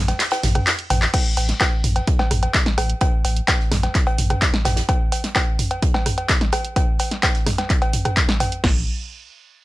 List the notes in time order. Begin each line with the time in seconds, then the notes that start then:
Already playing: A1
0.08 snare, closed hi-hat, cowbell
0.19 snare, clap, closed hi-hat, ride
0.31 snare, closed hi-hat, cowbell
0.43 A1, snare, closed hi-hat, mid tom, open hi-hat
0.55 cross-stick, closed hi-hat, mid tom, cowbell
0.67 snare, clap, closed hi-hat, ride
0.79 closed hi-hat
0.90 A1, closed hi-hat, mid tom, open hi-hat, cowbell
1.01 snare, clap, open hi-hat
1.14 kick, closed hi-hat, crash, cowbell
1.37 A1, closed hi-hat, open hi-hat, cowbell
1.49 snare, closed hi-hat
1.61 kick, snare, clap, closed hi-hat, cowbell
1.84 A1, closed hi-hat, mid tom, open hi-hat
1.96 closed hi-hat, cowbell
2.07 kick, closed hi-hat
2.19 snare, cowbell
2.31 A1, cross-stick, closed hi-hat, mid tom, open hi-hat
2.43 closed hi-hat, cowbell
2.54 kick, snare, clap, closed hi-hat
2.66 snare, closed hi-hat
2.78 A1, cross-stick, closed hi-hat, open hi-hat, cowbell
2.90 closed hi-hat
3.01 kick, closed hi-hat, cowbell
3.24 A1, closed hi-hat, open hi-hat, cowbell
3.36 closed hi-hat
3.48 kick, snare, clap, closed hi-hat, cowbell
3.60 snare
3.72 A1, cross-stick, snare, closed hi-hat, mid tom, open hi-hat
3.83 snare, closed hi-hat, cowbell
3.95 kick, clap, closed hi-hat
4.06 closed hi-hat, cowbell
4.18 A1, closed hi-hat, mid tom, open hi-hat
4.30 cross-stick, closed hi-hat, mid tom, cowbell
4.42 kick, snare, clap, closed hi-hat
4.54 snare, closed hi-hat
4.65 A1, snare, closed hi-hat, mid tom, open hi-hat, cowbell
4.76 snare, closed hi-hat
4.89 kick, closed hi-hat, cowbell
5.12 closed hi-hat, open hi-hat, cowbell
5.24 snare, closed hi-hat
5.35 kick, snare, clap, closed hi-hat, cowbell
5.59 closed hi-hat, mid tom, open hi-hat
5.71 closed hi-hat, cowbell
5.82 kick, closed hi-hat
5.94 snare, cowbell
6.06 cross-stick, closed hi-hat, mid tom, open hi-hat
6.18 closed hi-hat, cowbell
6.29 kick, snare, clap, closed hi-hat
6.41 snare, closed hi-hat
6.52 cross-stick, closed hi-hat, open hi-hat, cowbell
6.65 closed hi-hat
6.76 kick, closed hi-hat, cowbell
6.99 closed hi-hat, open hi-hat, cowbell
7.11 snare, closed hi-hat
7.23 kick, snare, clap, closed hi-hat, cowbell
7.35 snare, closed hi-hat
7.46 cross-stick, snare, closed hi-hat, mid tom, open hi-hat
7.58 snare, closed hi-hat, cowbell
7.70 kick, clap, closed hi-hat
7.82 closed hi-hat, cowbell
7.93 closed hi-hat, mid tom, open hi-hat
8.05 cross-stick, closed hi-hat, mid tom, cowbell
8.17 kick, clap, closed hi-hat
8.29 snare, closed hi-hat
8.40 closed hi-hat, mid tom, open hi-hat, cowbell
8.52 closed hi-hat
8.64 A1, kick, snare, crash